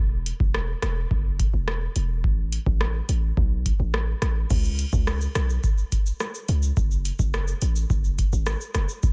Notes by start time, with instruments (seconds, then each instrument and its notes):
Already playing: 808-style bass E1
0.26 closed hi-hat
0.40 808-style bass E1, kick
0.54 cross-stick
0.82 808-style bass E1, cross-stick, closed hi-hat
1.11 808-style bass F#1, kick
1.40 kick, closed hi-hat
1.54 808-style bass E1
1.68 cross-stick
1.96 808-style bass E1, closed hi-hat
2.24 808-style bass A1, kick
2.52 closed hi-hat
2.66 808-style bass A1, kick
2.81 cross-stick
3.09 808-style bass A1, closed hi-hat
3.37 808-style bass B1, kick
3.66 kick, closed hi-hat
3.80 808-style bass A1
3.94 cross-stick
4.22 808-style bass A1, cross-stick, closed hi-hat
4.50 808-style bass C#2, kick, crash, shaker
4.65 shaker
4.79 closed hi-hat, shaker
4.93 808-style bass C#2, kick, shaker
5.07 cross-stick, shaker
5.21 shaker
5.35 808-style bass B1, cross-stick, closed hi-hat, shaker
5.50 shaker
5.64 kick, shaker
5.78 shaker
5.92 kick, closed hi-hat, shaker
6.06 shaker
6.20 cross-stick, shaker
6.35 shaker
6.48 808-style bass C#2, closed hi-hat, shaker
6.63 shaker
6.77 808-style bass F#1, kick, shaker
6.91 shaker
7.05 closed hi-hat, shaker
7.19 808-style bass F#1, kick, shaker
7.34 cross-stick, shaker
7.48 shaker
7.62 808-style bass A1, closed hi-hat, shaker
7.76 shaker
7.90 808-style bass F#1, kick, shaker
8.04 shaker
8.19 kick, closed hi-hat, shaker
8.33 808-style bass G#1, shaker
8.46 cross-stick, shaker
8.61 shaker
8.75 808-style bass F#1, cross-stick, closed hi-hat, shaker
8.89 shaker
9.03 808-style bass E1, kick, shaker